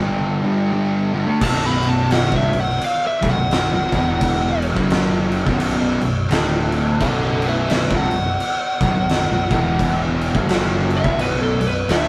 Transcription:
0.00 0.41 G2 loud
0.00 0.41 D3 loud
0.00 1.40 G3 medium
0.00 0.42 G3 loud
0.00 1.40 D4 medium
0.00 1.39 A4 medium
0.42 0.70 G2 medium
0.42 0.70 D3 medium
0.42 0.71 G3 loud
0.71 1.11 G2 loud
0.71 1.12 D3 loud
0.71 1.12 G3 loud
1.13 1.26 G2 medium
1.13 1.25 D3 loud
1.26 1.40 D3 medium
1.26 1.40 A3 loud
1.41 2.28 B0 loud
1.41 2.30 B1 medium
1.41 2.31 F#2 loud
1.41 2.31 B2 loud
1.41 4.73 B3 medium
1.41 5.43 F#4 medium
1.41 3.90 C#5 medium
1.41 1.65 A5 loud
1.41 kick loud
1.41 crash loud
1.41 crash medium
1.66 1.88 B5 medium
1.83 crash medium
1.88 2.11 A5 medium
2.11 2.34 F#5 medium
2.11 snare loud
2.11 crash medium
2.32 2.51 C1 loud
2.32 2.51 C2 loud
2.32 2.51 G2 loud
2.32 kick loud
2.36 2.58 E5 medium
2.52 2.79 B0 medium
2.52 2.75 B1 medium
2.52 2.76 F#2 medium
2.52 crash medium
2.60 2.82 F#5 medium
2.69 snare soft
2.81 3.05 F5 medium
2.81 crash medium
3.07 3.28 E5 medium
3.22 3.35 B0 loud
3.22 3.35 B1 loud
3.22 3.36 F#2 loud
3.22 kick loud
3.22 crash medium
3.30 4.64 F#5 loud
3.36 3.69 B0 medium
3.36 3.64 B1 medium
3.36 3.64 F#2 medium
3.51 snare loud
3.51 crash medium
3.72 3.91 B0 medium
3.72 3.92 B1 medium
3.72 3.92 F#2 medium
3.91 4.72 E1 loud
3.91 4.76 E2 loud
3.91 4.76 B2 loud
3.91 4.75 E3 medium
3.91 4.76 E3 loud
3.91 kick loud
3.91 crash medium
4.21 kick loud
4.21 crash medium
4.62 crash medium
4.76 5.42 F#1 loud
4.76 5.46 F#2 loud
4.76 5.46 C#3 loud
4.76 5.46 F#3 medium
4.76 5.46 F#3 loud
4.76 5.46 C#4 medium
4.76 kick loud
4.90 snare loud
4.90 crash medium
5.32 crash medium
5.46 5.98 B0 loud
5.46 6.01 B1 medium
5.46 6.01 F#2 loud
5.46 6.01 B2 loud
5.46 6.30 B3 medium
5.46 6.30 F#4 medium
5.46 6.30 C#5 medium
5.46 kick loud
5.46 snare soft
5.60 crash loud
6.01 6.29 B0 medium
6.01 6.25 B1 medium
6.01 6.25 F#2 medium
6.01 crash medium
6.31 6.97 D1 loud
6.31 7.00 D2 loud
6.31 7.00 A2 loud
6.31 7.00 D3 medium
6.31 7.00 D3 loud
6.31 7.00 A3 medium
6.31 7.00 E4 medium
6.31 snare loud
6.31 crash loud
6.72 crash medium
7.00 7.86 B0 loud
7.00 7.89 B1 loud
7.00 7.90 F#2 loud
7.00 7.90 B2 loud
7.00 10.32 B3 medium
7.00 11.85 F#4 medium
7.00 7.24 A4 medium
7.00 9.49 C#5 medium
7.00 7.23 F#5 loud
7.00 kick loud
7.00 crash medium
7.25 7.46 A4 medium
7.25 7.47 F#5 medium
7.42 crash medium
7.48 7.69 B4 medium
7.48 7.70 E5 medium
7.70 7.93 B4 medium
7.70 7.94 E5 medium
7.70 snare loud
7.70 crash loud
7.90 8.10 C1 loud
7.90 8.10 C2 medium
7.90 8.10 G2 loud
7.90 kick loud
7.97 10.00 F#5 loud
8.11 8.38 B0 medium
8.11 8.35 B1 medium
8.11 8.35 F#2 medium
8.11 crash medium
8.40 crash medium
8.81 8.94 B0 loud
8.81 8.94 B1 medium
8.81 8.95 F#2 loud
8.81 kick loud
8.81 crash medium
8.95 9.27 B0 medium
8.95 9.22 B1 medium
8.95 9.22 F#2 medium
9.09 snare loud
9.09 crash medium
9.29 9.48 B0 medium
9.29 9.50 B1 medium
9.29 9.49 F#2 medium
9.50 10.30 E1 loud
9.50 10.33 E2 medium
9.50 10.33 B2 loud
9.50 10.33 E3 medium
9.50 10.34 E3 loud
9.50 kick loud
9.50 crash medium
9.79 kick loud
9.79 crash medium
10.21 crash medium
10.32 11.00 F#1 loud
10.32 11.04 F#2 loud
10.32 11.04 C#3 loud
10.32 11.02 F#3 medium
10.32 11.04 F#3 loud
10.32 11.03 C#4 medium
10.32 kick loud
10.49 snare loud
10.49 crash medium
10.90 crash medium
10.97 11.18 E5 loud
11.03 11.56 B0 medium
11.03 11.59 B1 loud
11.03 11.59 F#2 loud
11.03 11.59 B2 loud
11.03 11.87 B3 medium
11.03 11.87 C#5 medium
11.03 kick loud
11.19 11.42 B4 medium
11.19 crash medium
11.42 11.65 A4 medium
11.59 11.86 B0 medium
11.59 11.83 B1 medium
11.59 11.83 F#2 medium
11.59 crash medium
11.67 11.88 B4 medium
11.86 12.08 D1 loud
11.86 12.08 D2 loud
11.86 12.08 A2 loud
11.86 12.08 D3 medium
11.86 12.08 D3 loud
11.86 12.08 A3 medium
11.86 12.08 E4 medium
11.86 crash loud
11.91 12.08 E5 medium
11.91 snare loud

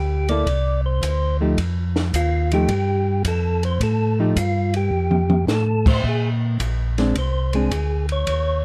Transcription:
0.00 0.45 D2 medium
0.00 0.29 G4 medium
0.29 0.45 A#3 medium
0.29 0.46 E4 medium
0.29 0.46 A4 medium
0.29 0.81 D5 loud
0.29 ride soft
0.46 1.01 C2 medium
0.46 kick soft
0.46 ride medium
0.86 1.37 C5 medium
1.02 1.56 D2 medium
1.02 kick soft
1.02 hi-hat pedal medium
1.02 ride medium
1.41 1.57 F3 medium
1.41 1.57 A3 medium
1.41 1.57 D#4 medium
1.41 1.57 G4 medium
1.57 2.12 F2 medium
1.57 kick soft
1.57 ride medium
1.96 snare soft
2.13 2.68 D#2 loud
2.13 2.52 F4 medium
2.13 kick soft
2.13 hi-hat pedal medium
2.13 ride medium
2.52 2.69 F3 medium
2.52 2.69 A3 medium
2.52 2.69 D#4 medium
2.52 3.22 G4 medium
2.52 2.69 G4 medium
2.52 ride soft
2.69 3.23 G2 medium
2.69 kick soft
2.69 ride medium
3.25 3.79 F2 medium
3.25 3.63 A4 medium
3.25 kick soft
3.25 hi-hat pedal soft
3.25 ride medium
3.63 3.82 C5 medium
3.63 ride soft
3.80 4.35 A2 loud
3.80 4.19 A4 medium
3.80 kick soft
3.80 ride medium
4.19 4.35 F3 medium
4.19 4.36 A3 medium
4.19 4.36 D#4 medium
4.19 4.36 G4 medium
4.36 4.91 G2 medium
4.36 4.74 F4 medium
4.36 kick soft
4.36 hi-hat pedal medium
4.36 ride medium
4.74 5.45 G4 medium
4.74 ride soft
4.91 5.46 F2 medium
5.11 mid tom medium
5.30 mid tom medium
5.47 6.02 A2 loud
5.47 5.86 A4 medium
5.47 snare medium
5.47 hi-hat pedal soft
5.86 6.05 C5 loud
5.86 kick medium
5.86 crash medium
6.04 6.58 A#2 medium
6.04 kick soft
6.08 6.30 G#4 medium
6.60 7.14 A#1 medium
6.60 kick soft
6.60 hi-hat pedal soft
6.60 ride medium
6.98 7.14 G#3 medium
6.98 7.14 C4 medium
6.98 7.15 D4 medium
6.98 snare soft
6.98 ride soft
7.15 7.70 C2 medium
7.15 7.54 C5 medium
7.15 kick soft
7.15 ride medium
7.53 7.70 G#3 medium
7.53 7.70 C4 medium
7.53 7.71 D4 medium
7.53 8.06 G#4 medium
7.53 ride soft
7.71 8.25 D2 medium
7.71 kick soft
7.71 hi-hat pedal soft
7.71 ride medium
8.09 8.65 C#5 loud
8.09 ride soft
8.27 8.65 D#2 medium
8.27 kick soft
8.27 ride medium

